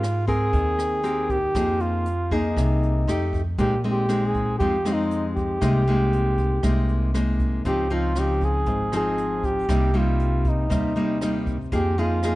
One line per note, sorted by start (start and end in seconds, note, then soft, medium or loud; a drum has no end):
0.00 0.49 G#2 medium
0.00 0.50 G#3 medium
0.00 0.28 F4 medium
0.00 cross-stick medium
0.00 closed hi-hat soft
0.27 1.00 C4 medium
0.27 1.32 G#4 loud
0.27 1.00 A#4 medium
0.27 kick medium
0.27 closed hi-hat soft
0.53 1.51 D#2 medium
0.53 1.52 D#3 medium
0.53 kick medium
0.53 closed hi-hat soft
0.79 cross-stick medium
0.79 closed hi-hat soft
1.03 1.37 C4 medium
1.03 1.37 G4 medium
1.03 1.37 A#4 medium
1.03 closed hi-hat soft
1.29 1.83 G4 medium
1.29 kick medium
1.29 closed hi-hat soft
1.55 2.53 F2 loud
1.55 2.55 F3 medium
1.55 2.06 A#3 medium
1.55 2.06 D#4 medium
1.55 2.07 G#4 medium
1.55 kick medium
1.55 cross-stick medium
1.55 closed hi-hat soft
1.80 2.35 F4 medium
1.80 closed hi-hat soft
2.05 closed hi-hat soft
2.31 3.04 A#3 medium
2.31 3.04 D#4 medium
2.31 3.34 D#4 medium
2.31 3.04 G#4 medium
2.31 kick soft
2.31 closed hi-hat soft
2.56 3.04 C2 medium
2.56 3.05 C3 medium
2.56 kick medium
2.56 cross-stick medium
2.56 closed hi-hat soft
2.83 closed hi-hat soft
3.08 3.55 F2 medium
3.08 3.41 A3 medium
3.08 3.41 D#4 medium
3.08 3.41 G4 medium
3.08 cross-stick medium
3.08 closed hi-hat soft
3.33 kick medium
3.33 closed hi-hat soft
3.58 4.56 A#1 loud
3.58 4.58 A#2 medium
3.58 3.73 G#3 medium
3.58 3.74 C4 medium
3.58 3.74 D#4 medium
3.58 3.83 G4 loud
3.58 kick medium
3.58 closed hi-hat soft
3.84 4.05 G#3 medium
3.84 4.06 C4 medium
3.84 4.06 D#4 medium
3.84 closed hi-hat soft
3.91 4.28 G4 medium
4.09 4.56 G#3 medium
4.09 4.56 C4 medium
4.09 4.56 D#4 medium
4.09 cross-stick medium
4.09 closed hi-hat soft
4.26 4.58 G#4 medium
4.34 kick medium
4.34 closed hi-hat soft
4.59 5.58 F2 medium
4.59 5.59 F3 medium
4.59 4.75 G#3 medium
4.59 4.75 C4 medium
4.59 4.76 D#4 medium
4.59 4.94 G4 loud
4.59 kick medium
4.59 closed hi-hat soft
4.85 5.58 G#3 medium
4.85 5.58 C4 medium
4.85 5.58 D#4 medium
4.85 cross-stick medium
4.85 closed hi-hat soft
4.93 5.28 D#4 medium
5.11 closed hi-hat soft
5.36 7.10 G4 loud
5.36 kick medium
5.36 closed hi-hat soft
5.61 6.59 C2 loud
5.61 6.61 C3 medium
5.61 5.83 G#3 medium
5.61 5.83 A#3 medium
5.61 5.83 D#4 medium
5.61 kick medium
5.61 cross-stick medium
5.61 closed hi-hat soft
5.87 6.60 G#3 medium
5.87 6.60 A#3 medium
5.87 6.60 D#4 medium
5.87 closed hi-hat soft
6.13 closed hi-hat soft
6.38 kick medium
6.38 closed hi-hat soft
6.63 7.61 C2 medium
6.63 7.63 C3 medium
6.63 7.10 G#3 medium
6.63 7.11 A#3 medium
6.63 7.11 D#4 medium
6.63 kick medium
6.63 cross-stick medium
6.63 closed hi-hat soft
6.89 closed hi-hat soft
7.14 7.63 G#3 soft
7.14 7.63 A#3 medium
7.14 7.64 D#4 medium
7.14 cross-stick medium
7.14 closed hi-hat soft
7.40 kick medium
7.40 closed hi-hat soft
7.65 8.63 C#2 loud
7.65 8.65 C#3 medium
7.65 7.87 F3 medium
7.65 7.87 C4 medium
7.65 7.87 D#4 medium
7.65 7.95 G4 medium
7.65 kick medium
7.65 closed hi-hat soft
7.90 8.12 F3 medium
7.90 8.12 C4 medium
7.90 8.13 D#4 medium
7.90 8.21 F4 medium
7.90 closed hi-hat soft
8.15 8.89 F3 medium
8.15 8.89 C4 medium
8.15 8.89 D#4 medium
8.15 8.46 G4 medium
8.15 cross-stick soft
8.15 closed hi-hat soft
8.41 8.94 G#4 medium
8.41 kick soft
8.41 closed hi-hat soft
8.66 9.65 G#1 medium
8.66 9.66 G#2 medium
8.66 kick medium
8.66 closed hi-hat soft
8.92 9.65 F3 medium
8.92 9.65 C4 medium
8.92 9.65 D#4 medium
8.92 cross-stick medium
8.92 closed hi-hat soft
8.96 9.47 G#4 loud
9.18 closed hi-hat soft
9.43 9.99 G4 medium
9.43 kick medium
9.43 closed hi-hat soft
9.69 10.67 C2 loud
9.69 10.68 C3 medium
9.69 9.90 G3 medium
9.69 9.90 A#3 medium
9.69 9.90 D#4 medium
9.69 kick medium
9.69 cross-stick medium
9.69 closed hi-hat soft
9.94 10.66 G3 medium
9.94 10.66 A#3 medium
9.94 10.67 D#4 medium
9.94 10.50 F4 medium
9.94 closed hi-hat soft
10.20 closed hi-hat soft
10.45 kick medium
10.45 closed hi-hat soft
10.49 11.49 D#4 medium
10.70 11.68 D#2 medium
10.70 11.69 C3 medium
10.70 10.92 G3 medium
10.70 10.92 A#3 medium
10.70 10.92 D#4 medium
10.70 kick medium
10.70 cross-stick medium
10.70 closed hi-hat soft
10.96 11.17 G3 medium
10.96 11.18 A#3 medium
10.96 11.18 D#4 medium
10.96 closed hi-hat soft
11.21 11.56 G3 medium
11.21 11.56 A#3 medium
11.21 11.56 D#4 medium
11.21 cross-stick medium
11.21 closed hi-hat soft
11.47 kick medium
11.47 closed hi-hat soft
11.72 12.35 F2 loud
11.72 12.35 F3 medium
11.72 11.94 A#3 medium
11.72 11.94 D#4 medium
11.72 12.00 G4 loud
11.72 11.94 G#4 medium
11.72 kick medium
11.72 closed hi-hat soft
11.98 12.19 A#3 medium
11.98 12.20 D#4 medium
11.98 12.35 F4 loud
11.98 12.20 G#4 medium
11.98 closed hi-hat soft
12.23 12.35 A#3 medium
12.23 12.35 D#4 medium
12.23 12.35 G#4 medium
12.23 cross-stick medium
12.23 closed hi-hat soft